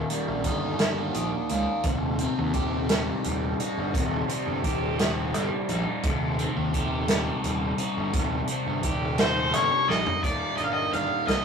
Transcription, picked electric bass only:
0.27 0.41 A#1 medium
0.44 1.15 G1 medium
1.15 1.29 A#1 medium
1.51 1.64 C#2 medium
1.84 2.25 D#1 loud
2.38 2.51 D#2 medium
2.54 3.09 D#1 medium
3.26 3.52 D#1 medium
3.77 3.91 G1 medium
3.94 4.22 D#1 medium
4.47 4.61 G1 medium
4.64 5.34 D#1 medium
5.34 5.47 G1 medium
5.69 5.83 A#1 medium
6.04 6.45 D#1 loud
6.56 6.70 D#2 medium
6.74 7.28 D#1 medium
7.44 7.71 D#1 medium
7.97 8.10 G1 medium
8.13 8.41 D#1 loud
8.66 8.80 G1 medium
8.83 9.53 D#1 medium
9.53 9.67 G1 medium
9.89 10.02 A#1 medium
10.23 10.37 D#1 medium
10.59 10.86 G1 medium
10.93 11.07 G1 medium
11.28 11.45 C2 medium

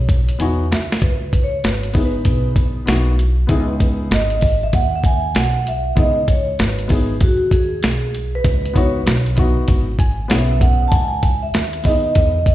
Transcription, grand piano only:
0.39 0.64 B3 medium
0.39 0.64 D#4 medium
0.39 0.65 E4 medium
0.39 0.65 F#4 medium
0.39 0.69 G#5 medium
0.72 1.00 E5 medium
1.93 2.83 B3 medium
1.93 2.83 D#4 medium
1.93 2.83 E4 medium
1.93 2.84 G#4 medium
2.86 3.11 B3 medium
2.86 3.12 D#4 medium
2.86 3.12 E4 medium
2.86 3.13 F#4 medium
3.47 4.37 B3 medium
3.47 4.37 D#4 medium
3.47 4.38 E4 medium
3.47 4.38 G#4 medium
5.96 6.21 B3 medium
5.96 6.21 D#4 medium
5.96 6.22 E4 medium
5.96 6.22 G#4 medium
6.88 7.13 B3 medium
6.88 7.14 D#4 medium
6.88 7.14 E4 medium
6.88 7.15 G#4 medium
8.73 8.99 B3 medium
8.73 8.99 D#4 medium
8.73 9.00 E4 medium
8.73 9.01 F#4 medium
9.36 9.83 B3 medium
9.36 9.84 D#4 medium
9.36 9.84 E4 medium
9.36 9.85 F#4 medium
9.99 10.28 G#5 medium
10.28 10.91 B3 medium
10.28 10.91 C#4 medium
10.28 10.92 E4 medium
10.28 10.92 G#4 medium
10.28 10.48 F#5 medium
10.50 10.89 E5 medium
11.84 12.31 B3 medium
11.84 12.32 D#4 medium
11.84 12.32 E4 medium
11.84 12.33 G#4 medium

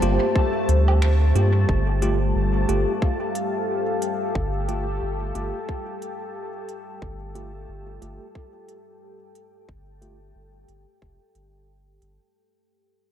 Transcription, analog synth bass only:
0.02 0.19 G1 medium
0.69 1.33 D2 medium
1.35 1.65 G2 medium
1.69 2.33 G1 loud
2.35 2.65 G1 medium
2.69 2.86 G1 medium
4.35 4.99 G1 loud
5.02 5.32 G1 medium
5.35 5.52 G1 medium
7.02 7.66 G1 medium
7.69 7.98 G1 medium
8.02 8.19 G1 medium
9.69 10.33 G1 medium
10.35 10.65 G1 medium
10.69 10.85 G1 medium
11.02 11.19 F1 medium
11.35 11.99 G1 medium
12.02 12.19 G1 medium

